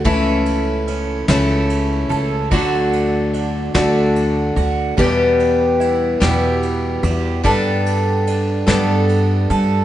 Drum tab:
RD |xxxxxx|xxxxxx|xxxxxx|xxxxxx|
SD |---o--|---o--|---o--|---o--|
BD |o-----|o-----|o-----|o-----|